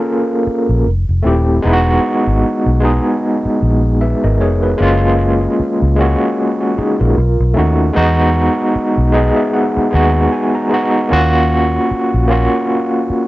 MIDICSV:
0, 0, Header, 1, 4, 480
1, 0, Start_track
1, 0, Tempo, 789474
1, 990, Time_signature, 4, 2, 24, 8
1, 8073, End_track
2, 0, Start_track
2, 0, Title_t, "Tine electric piano"
2, 0, Program_c, 0, 4
2, 0, Control_c, 0, 64, 127
2, 0, Note_on_c, 0, 58, 88
2, 0, Note_on_c, 0, 61, 77
2, 0, Note_on_c, 0, 65, 77
2, 0, Note_on_c, 0, 68, 127
2, 0, Note_on_c, 0, 69, 85
2, 0, Note_on_c, 0, 70, 97
2, 509, Note_off_c, 0, 58, 0
2, 513, Note_off_c, 0, 61, 0
2, 516, Control_c, 0, 64, 0
2, 517, Note_off_c, 0, 65, 0
2, 517, Note_off_c, 0, 68, 0
2, 521, Note_off_c, 0, 69, 0
2, 542, Note_off_c, 0, 70, 0
2, 635, Control_c, 0, 64, 127
2, 745, Note_on_c, 0, 57, 87
2, 754, Note_on_c, 0, 60, 83
2, 762, Note_on_c, 0, 64, 80
2, 770, Note_on_c, 0, 67, 94
2, 968, Note_off_c, 0, 57, 0
2, 973, Note_off_c, 0, 60, 0
2, 977, Note_off_c, 0, 64, 0
2, 981, Note_off_c, 0, 67, 0
2, 986, Note_on_c, 0, 56, 120
2, 996, Note_on_c, 0, 59, 99
2, 998, Control_c, 0, 64, 0
2, 1005, Note_on_c, 0, 63, 102
2, 1013, Note_on_c, 0, 64, 101
2, 1046, Note_off_c, 0, 64, 0
2, 1053, Note_on_c, 0, 66, 127
2, 1089, Control_c, 0, 64, 127
2, 1650, Note_off_c, 0, 56, 0
2, 1655, Note_off_c, 0, 59, 0
2, 1660, Note_off_c, 0, 63, 0
2, 1683, Note_off_c, 0, 66, 0
2, 1705, Note_on_c, 0, 56, 87
2, 1715, Note_on_c, 0, 59, 76
2, 1724, Note_on_c, 0, 63, 76
2, 1733, Note_on_c, 0, 68, 99
2, 2149, Note_off_c, 0, 56, 0
2, 2154, Note_off_c, 0, 59, 0
2, 2158, Note_off_c, 0, 63, 0
2, 2163, Note_off_c, 0, 68, 0
2, 2439, Note_on_c, 0, 76, 66
2, 2443, Note_on_c, 0, 71, 53
2, 2564, Note_off_c, 0, 76, 0
2, 2566, Note_off_c, 0, 71, 0
2, 2577, Note_on_c, 0, 75, 66
2, 2580, Note_on_c, 0, 70, 60
2, 2670, Note_off_c, 0, 75, 0
2, 2672, Note_off_c, 0, 70, 0
2, 2680, Note_on_c, 0, 73, 69
2, 2684, Note_on_c, 0, 68, 61
2, 2805, Note_off_c, 0, 73, 0
2, 2807, Note_off_c, 0, 68, 0
2, 2814, Note_on_c, 0, 71, 62
2, 2817, Note_on_c, 0, 66, 49
2, 2903, Note_on_c, 0, 56, 110
2, 2913, Note_on_c, 0, 58, 102
2, 2917, Control_c, 0, 64, 0
2, 2921, Note_on_c, 0, 61, 100
2, 2931, Note_on_c, 0, 65, 127
2, 3036, Control_c, 0, 64, 127
2, 3038, Note_off_c, 0, 71, 0
2, 3040, Note_off_c, 0, 66, 0
2, 3569, Note_off_c, 0, 56, 0
2, 3573, Note_off_c, 0, 58, 0
2, 3577, Note_off_c, 0, 61, 0
2, 3583, Note_off_c, 0, 65, 0
2, 3626, Note_on_c, 0, 56, 89
2, 3635, Note_on_c, 0, 58, 79
2, 3643, Note_on_c, 0, 61, 84
2, 3653, Note_on_c, 0, 66, 101
2, 3876, Note_off_c, 0, 61, 0
2, 3881, Note_off_c, 0, 66, 0
2, 4017, Note_on_c, 0, 66, 66
2, 4020, Note_on_c, 0, 61, 51
2, 4110, Note_off_c, 0, 66, 0
2, 4112, Note_off_c, 0, 61, 0
2, 4121, Note_on_c, 0, 68, 71
2, 4124, Note_on_c, 0, 63, 61
2, 4245, Note_off_c, 0, 68, 0
2, 4247, Note_off_c, 0, 63, 0
2, 4255, Note_on_c, 0, 70, 64
2, 4257, Note_on_c, 0, 65, 54
2, 4348, Note_off_c, 0, 56, 0
2, 4352, Note_off_c, 0, 58, 0
2, 4357, Control_c, 0, 64, 0
2, 4472, Control_c, 0, 64, 127
2, 4478, Note_off_c, 0, 70, 0
2, 4480, Note_off_c, 0, 65, 0
2, 4583, Note_on_c, 0, 57, 89
2, 4593, Note_on_c, 0, 61, 77
2, 4601, Note_on_c, 0, 63, 83
2, 4612, Note_on_c, 0, 66, 98
2, 4807, Note_off_c, 0, 57, 0
2, 4812, Note_off_c, 0, 61, 0
2, 4816, Note_off_c, 0, 63, 0
2, 4821, Note_off_c, 0, 66, 0
2, 4822, Note_on_c, 0, 56, 114
2, 4832, Note_on_c, 0, 59, 107
2, 4838, Control_c, 0, 64, 0
2, 4840, Note_on_c, 0, 63, 110
2, 4848, Note_on_c, 0, 66, 123
2, 4959, Control_c, 0, 64, 127
2, 5488, Note_off_c, 0, 56, 0
2, 5493, Note_off_c, 0, 59, 0
2, 5497, Note_off_c, 0, 63, 0
2, 5501, Note_off_c, 0, 66, 0
2, 5545, Note_on_c, 0, 56, 89
2, 5553, Note_on_c, 0, 59, 80
2, 5557, Note_on_c, 0, 75, 73
2, 5562, Note_on_c, 0, 63, 80
2, 5571, Note_on_c, 0, 68, 99
2, 5680, Note_off_c, 0, 75, 0
2, 5691, Note_on_c, 0, 76, 71
2, 5785, Note_off_c, 0, 76, 0
2, 5797, Note_on_c, 0, 78, 71
2, 5989, Note_off_c, 0, 56, 0
2, 5993, Note_off_c, 0, 59, 0
2, 5997, Note_off_c, 0, 63, 0
2, 6002, Note_off_c, 0, 68, 0
2, 6017, Note_off_c, 0, 78, 0
2, 6024, Note_on_c, 0, 56, 88
2, 6033, Note_on_c, 0, 59, 76
2, 6038, Note_on_c, 0, 80, 71
2, 6042, Note_on_c, 0, 63, 79
2, 6051, Note_on_c, 0, 66, 102
2, 6257, Note_off_c, 0, 80, 0
2, 6276, Note_on_c, 0, 80, 72
2, 6400, Note_off_c, 0, 80, 0
2, 6413, Note_on_c, 0, 82, 68
2, 6468, Note_off_c, 0, 56, 0
2, 6473, Note_off_c, 0, 59, 0
2, 6477, Note_off_c, 0, 63, 0
2, 6482, Note_off_c, 0, 66, 0
2, 6500, Note_on_c, 0, 56, 81
2, 6510, Note_on_c, 0, 59, 74
2, 6519, Note_on_c, 0, 63, 77
2, 6528, Note_on_c, 0, 66, 94
2, 6726, Note_off_c, 0, 56, 0
2, 6730, Note_off_c, 0, 82, 0
2, 6731, Note_off_c, 0, 59, 0
2, 6735, Note_off_c, 0, 63, 0
2, 6740, Note_off_c, 0, 66, 0
2, 6741, Note_on_c, 0, 58, 112
2, 6750, Note_on_c, 0, 61, 101
2, 6759, Control_c, 0, 64, 0
2, 6759, Note_on_c, 0, 65, 107
2, 6767, Note_on_c, 0, 66, 127
2, 6871, Control_c, 0, 64, 127
2, 7408, Note_off_c, 0, 58, 0
2, 7412, Note_off_c, 0, 61, 0
2, 7417, Note_off_c, 0, 65, 0
2, 7421, Note_off_c, 0, 66, 0
2, 7464, Note_on_c, 0, 58, 93
2, 7473, Note_on_c, 0, 61, 83
2, 7481, Note_on_c, 0, 65, 86
2, 7492, Note_on_c, 0, 66, 98
2, 8073, Note_off_c, 0, 58, 0
2, 8073, Note_off_c, 0, 61, 0
2, 8073, Note_off_c, 0, 65, 0
2, 8073, Note_off_c, 0, 66, 0
2, 8073, End_track
3, 0, Start_track
3, 0, Title_t, "Fingered electric bass"
3, 0, Program_c, 1, 33
3, 421, Note_on_c, 1, 34, 80
3, 502, Note_off_c, 1, 34, 0
3, 526, Note_on_c, 1, 29, 92
3, 633, Note_off_c, 1, 29, 0
3, 662, Note_on_c, 1, 29, 77
3, 742, Note_off_c, 1, 29, 0
3, 765, Note_on_c, 1, 27, 96
3, 960, Note_off_c, 1, 27, 0
3, 1004, Note_on_c, 1, 28, 107
3, 1199, Note_off_c, 1, 28, 0
3, 1381, Note_on_c, 1, 32, 88
3, 1462, Note_off_c, 1, 32, 0
3, 1619, Note_on_c, 1, 35, 84
3, 1815, Note_off_c, 1, 35, 0
3, 2204, Note_on_c, 1, 34, 98
3, 2513, Note_off_c, 1, 34, 0
3, 2579, Note_on_c, 1, 32, 83
3, 2682, Note_off_c, 1, 32, 0
3, 2682, Note_on_c, 1, 29, 91
3, 2878, Note_off_c, 1, 29, 0
3, 2921, Note_on_c, 1, 30, 104
3, 3319, Note_off_c, 1, 30, 0
3, 3539, Note_on_c, 1, 37, 81
3, 3735, Note_off_c, 1, 37, 0
3, 4261, Note_on_c, 1, 34, 86
3, 4342, Note_off_c, 1, 34, 0
3, 4364, Note_on_c, 1, 35, 99
3, 4472, Note_off_c, 1, 35, 0
3, 4500, Note_on_c, 1, 35, 86
3, 4581, Note_off_c, 1, 35, 0
3, 4604, Note_on_c, 1, 39, 81
3, 4799, Note_off_c, 1, 39, 0
3, 4845, Note_on_c, 1, 40, 115
3, 5154, Note_off_c, 1, 40, 0
3, 5458, Note_on_c, 1, 35, 90
3, 5654, Note_off_c, 1, 35, 0
3, 6044, Note_on_c, 1, 39, 87
3, 6239, Note_off_c, 1, 39, 0
3, 6763, Note_on_c, 1, 39, 101
3, 7160, Note_off_c, 1, 39, 0
3, 7382, Note_on_c, 1, 34, 81
3, 7577, Note_off_c, 1, 34, 0
3, 8073, End_track
4, 0, Start_track
4, 0, Title_t, "Muted fingered electric bass strokes"
4, 286, Note_on_c, 9, 29, 46
4, 347, Note_off_c, 9, 29, 0
4, 1486, Note_on_c, 9, 29, 44
4, 1546, Note_off_c, 9, 29, 0
4, 2100, Note_on_c, 9, 29, 51
4, 2161, Note_off_c, 9, 29, 0
4, 3403, Note_on_c, 9, 29, 46
4, 3463, Note_off_c, 9, 29, 0
4, 4124, Note_on_c, 9, 29, 46
4, 4185, Note_off_c, 9, 29, 0
4, 5323, Note_on_c, 9, 29, 45
4, 5384, Note_off_c, 9, 29, 0
4, 5940, Note_on_c, 9, 29, 54
4, 6001, Note_off_c, 9, 29, 0
4, 7242, Note_on_c, 9, 29, 46
4, 7303, Note_off_c, 9, 29, 0
4, 7964, Note_on_c, 9, 29, 49
4, 8025, Note_off_c, 9, 29, 0
4, 8073, End_track
0, 0, End_of_file